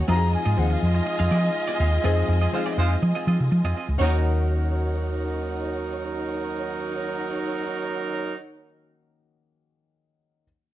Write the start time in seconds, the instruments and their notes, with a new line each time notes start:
Already playing: grand piano D#3 F#4
0.08 fingered electric bass F2, grand piano F3 C4 D#4 F#4, french horn section G#3 D#4 F4, clean electric guitar C4 F4 G#4 D#5, string section F4 D#5 G#5, alto flute A#5
0.15 grand piano G#4
0.33 alto flute G#5, muted clean electric guitar stroke
0.45 fingered electric bass G#2, clean electric guitar C4 F4 G#4 D#5
0.57 fingered electric bass D#2, grand piano F3 C4 D#4 G#4, alto flute F#5, muted clean electric guitar stroke
0.70 alto flute F5, muted clean electric guitar stroke
0.83 fingered electric bass F2, alto flute D#5
0.94 muted clean electric guitar stroke
1.06 muted clean electric guitar stroke
1.19 fingered electric bass F2, clean electric guitar C4 F4 G#4 F5
1.30 fingered electric bass F3, clean electric guitar C4 F4 G#4 D#5
1.44 muted clean electric guitar stroke
1.55 muted clean electric guitar stroke
1.68 clean electric guitar C4 F4 G#4 D#5
1.80 fingered electric bass D#2, clean electric guitar C4 F4 G#4 F5
1.93 muted clean electric guitar stroke
2.04 fingered electric bass F2, grand piano F3 C4 D#4 G#4, clean electric guitar C4 F4 G#4 D#5
2.17 muted clean electric guitar stroke
2.28 fingered electric bass F2, muted clean electric guitar stroke
2.42 clean electric guitar C4 F4 G#4 D#5
2.53 grand piano F3 C4 D#4 G#4, horn section G#3 F4 C5, muted clean electric guitar stroke
2.66 clean electric guitar C4 F4 G#4 D#5
2.78 fingered electric bass F2, horn section G#3 F4 C5
2.91 muted clean electric guitar stroke
3.02 fingered electric bass F3, muted clean electric guitar stroke
3.15 clean electric guitar C4 F4 G#4 D#5
3.27 fingered electric bass F3, clean electric guitar C4 F4 G#4 D#5
3.40 fingered electric bass C3, muted clean electric guitar stroke
3.51 fingered electric bass F3, muted clean electric guitar stroke
3.64 fingered electric bass F2, clean electric guitar C4 F4 G#4 D#5
3.76 clean electric guitar C4 F4 G#4 D#5
3.88 fingered electric bass C#2, muted clean electric guitar stroke
3.98 fingered electric bass D#2, grand piano D#3 A#3 C#4, french horn section D#3 A#3 C#4 D#4 F#4, horn section F#3 D#4 A#4, clean electric guitar C#4 F#4, string section D#4 C#5 F#5
4.03 grand piano F#4, clean electric guitar A#4 D#5